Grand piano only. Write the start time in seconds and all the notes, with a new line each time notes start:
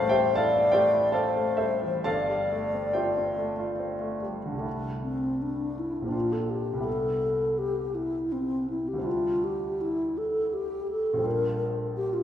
Already playing: A1 A2 G3 A4 D5 F5 A5
0.00 A3
0.09 G4 C5 E5 G5
0.18 C4
0.35 E4 A4 D5 F5 A5
0.56 C4
0.72 A3 G4 C5 E5 G5
0.93 E4
1.12 C4 A4 D5 F5 A5
1.36 A3
1.57 G3 A4 C5 E5
1.83 E3
2.04 G1 G2 A4 D5 F5 A5
2.29 G3
2.52 A3
2.74 C4
2.93 F4 G4 C5 E5 G5
3.17 C4
3.38 A3
3.59 F4
3.80 C4
4.01 A3
4.23 G3
4.45 D3
4.52 C2 G3
4.57 A3 D4
4.62 E4
6.02 A#1 A#3
6.06 C4 D4
6.12 F4
6.73 C2 G3
6.78 B3 E4
8.93 D2 G3
8.98 C4 D4
9.03 E4
11.14 A#1 G3
11.18 C4 D4
11.23 F4